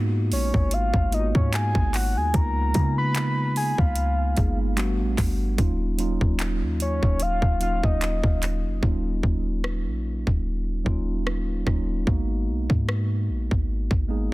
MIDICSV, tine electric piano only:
0, 0, Header, 1, 2, 480
1, 0, Start_track
1, 0, Key_signature, -6, "minor"
1, 0, Tempo, 810811
1, 1386, Time_signature, 4, 2, 24, 8
1, 8486, End_track
2, 0, Start_track
2, 0, Title_t, "Tine electric piano"
2, 0, Program_c, 0, 4
2, 0, Control_c, 0, 64, 127
2, 0, Note_on_c, 0, 56, 85
2, 0, Note_on_c, 0, 58, 78
2, 0, Note_on_c, 0, 59, 76
2, 0, Note_on_c, 0, 63, 82
2, 0, Note_on_c, 0, 65, 79
2, 0, Note_on_c, 0, 66, 95
2, 320, Note_off_c, 0, 56, 0
2, 321, Note_off_c, 0, 58, 0
2, 323, Note_off_c, 0, 59, 0
2, 324, Note_off_c, 0, 63, 0
2, 345, Note_off_c, 0, 66, 0
2, 659, Note_on_c, 0, 56, 67
2, 663, Note_on_c, 0, 58, 68
2, 665, Note_on_c, 0, 59, 65
2, 668, Note_on_c, 0, 63, 65
2, 672, Note_off_c, 0, 65, 0
2, 672, Note_on_c, 0, 65, 64
2, 710, Note_off_c, 0, 65, 0
2, 710, Note_on_c, 0, 66, 75
2, 1121, Note_off_c, 0, 56, 0
2, 1122, Note_off_c, 0, 58, 0
2, 1124, Note_off_c, 0, 59, 0
2, 1125, Note_off_c, 0, 63, 0
2, 1146, Note_off_c, 0, 66, 0
2, 1378, Note_on_c, 0, 56, 73
2, 1381, Note_on_c, 0, 58, 69
2, 1384, Note_on_c, 0, 59, 69
2, 1388, Note_on_c, 0, 63, 64
2, 1391, Note_on_c, 0, 65, 83
2, 1394, Control_c, 0, 64, 0
2, 1499, Control_c, 0, 64, 127
2, 1541, Note_off_c, 0, 56, 0
2, 1543, Note_off_c, 0, 58, 0
2, 1544, Note_off_c, 0, 59, 0
2, 1546, Note_off_c, 0, 63, 0
2, 1548, Note_off_c, 0, 65, 0
2, 1618, Note_on_c, 0, 56, 73
2, 1621, Note_on_c, 0, 58, 66
2, 1624, Note_on_c, 0, 59, 72
2, 1628, Note_on_c, 0, 63, 64
2, 1631, Note_on_c, 0, 65, 83
2, 2239, Note_off_c, 0, 56, 0
2, 2241, Note_off_c, 0, 58, 0
2, 2242, Note_off_c, 0, 59, 0
2, 2244, Note_off_c, 0, 63, 0
2, 2246, Note_off_c, 0, 65, 0
2, 2579, Note_on_c, 0, 56, 69
2, 2581, Note_on_c, 0, 58, 65
2, 2585, Note_on_c, 0, 59, 63
2, 2588, Note_on_c, 0, 63, 64
2, 2591, Note_on_c, 0, 68, 74
2, 2818, Note_off_c, 0, 59, 0
2, 2818, Note_on_c, 0, 55, 97
2, 2821, Note_on_c, 0, 57, 90
2, 2822, Note_off_c, 0, 56, 0
2, 2824, Note_off_c, 0, 58, 0
2, 2825, Note_on_c, 0, 59, 89
2, 2827, Note_off_c, 0, 63, 0
2, 2827, Note_on_c, 0, 62, 85
2, 2828, Note_off_c, 0, 68, 0
2, 2831, Note_on_c, 0, 66, 111
2, 2834, Control_c, 0, 64, 0
2, 2936, Control_c, 0, 64, 127
2, 3214, Note_off_c, 0, 55, 0
2, 3215, Note_off_c, 0, 57, 0
2, 3217, Note_off_c, 0, 59, 0
2, 3218, Note_off_c, 0, 62, 0
2, 3220, Note_off_c, 0, 66, 0
2, 3298, Note_on_c, 0, 54, 85
2, 3302, Note_on_c, 0, 58, 79
2, 3305, Note_on_c, 0, 61, 80
2, 3308, Note_on_c, 0, 63, 81
2, 3311, Note_on_c, 0, 65, 98
2, 3313, Control_c, 0, 64, 0
2, 3402, Control_c, 0, 64, 127
2, 3461, Note_off_c, 0, 54, 0
2, 3463, Note_off_c, 0, 58, 0
2, 3464, Note_off_c, 0, 61, 0
2, 3466, Note_off_c, 0, 63, 0
2, 3468, Note_off_c, 0, 65, 0
2, 3540, Note_on_c, 0, 54, 86
2, 3543, Note_on_c, 0, 58, 78
2, 3546, Note_on_c, 0, 61, 76
2, 3549, Note_on_c, 0, 63, 80
2, 3552, Note_on_c, 0, 65, 98
2, 4160, Note_off_c, 0, 54, 0
2, 4162, Note_off_c, 0, 58, 0
2, 4163, Note_off_c, 0, 61, 0
2, 4165, Note_off_c, 0, 63, 0
2, 4166, Note_off_c, 0, 65, 0
2, 4500, Note_on_c, 0, 54, 68
2, 4502, Note_on_c, 0, 58, 59
2, 4506, Note_on_c, 0, 61, 62
2, 4509, Note_on_c, 0, 63, 62
2, 4512, Note_on_c, 0, 65, 74
2, 4961, Note_off_c, 0, 54, 0
2, 4962, Note_off_c, 0, 58, 0
2, 4964, Note_off_c, 0, 61, 0
2, 4965, Note_off_c, 0, 63, 0
2, 4967, Note_off_c, 0, 65, 0
2, 5219, Note_on_c, 0, 54, 77
2, 5223, Note_on_c, 0, 58, 76
2, 5226, Note_on_c, 0, 61, 73
2, 5229, Note_on_c, 0, 63, 72
2, 5232, Note_on_c, 0, 65, 84
2, 5234, Control_c, 0, 64, 0
2, 5333, Control_c, 0, 64, 127
2, 5840, Note_off_c, 0, 54, 0
2, 5842, Note_off_c, 0, 58, 0
2, 5843, Note_off_c, 0, 61, 0
2, 5845, Note_off_c, 0, 63, 0
2, 5846, Note_off_c, 0, 65, 0
2, 6419, Note_on_c, 0, 54, 83
2, 6422, Note_on_c, 0, 58, 79
2, 6425, Note_on_c, 0, 61, 78
2, 6428, Note_on_c, 0, 63, 75
2, 6431, Note_on_c, 0, 65, 96
2, 6732, Note_off_c, 0, 54, 0
2, 6733, Note_off_c, 0, 58, 0
2, 6735, Note_off_c, 0, 61, 0
2, 6736, Note_off_c, 0, 63, 0
2, 6738, Note_off_c, 0, 65, 0
2, 6899, Note_on_c, 0, 54, 74
2, 6902, Note_on_c, 0, 58, 71
2, 6905, Note_on_c, 0, 61, 69
2, 6908, Note_on_c, 0, 63, 69
2, 6911, Note_on_c, 0, 65, 80
2, 7061, Note_off_c, 0, 54, 0
2, 7063, Note_off_c, 0, 58, 0
2, 7064, Note_off_c, 0, 61, 0
2, 7066, Note_off_c, 0, 63, 0
2, 7068, Note_off_c, 0, 65, 0
2, 7139, Note_on_c, 0, 56, 79
2, 7142, Note_on_c, 0, 58, 79
2, 7145, Note_on_c, 0, 59, 74
2, 7149, Note_on_c, 0, 63, 74
2, 7151, Note_on_c, 0, 66, 86
2, 7153, Control_c, 0, 64, 0
2, 7243, Control_c, 0, 64, 127
2, 7760, Note_off_c, 0, 56, 0
2, 7761, Note_off_c, 0, 58, 0
2, 7763, Note_off_c, 0, 59, 0
2, 7765, Note_off_c, 0, 63, 0
2, 7766, Note_off_c, 0, 66, 0
2, 8338, Note_on_c, 0, 56, 90
2, 8341, Note_on_c, 0, 58, 78
2, 8345, Note_on_c, 0, 59, 76
2, 8348, Note_on_c, 0, 63, 76
2, 8351, Note_on_c, 0, 68, 90
2, 8486, Note_off_c, 0, 56, 0
2, 8486, Note_off_c, 0, 58, 0
2, 8486, Note_off_c, 0, 59, 0
2, 8486, Note_off_c, 0, 63, 0
2, 8486, Note_off_c, 0, 68, 0
2, 8486, End_track
0, 0, End_of_file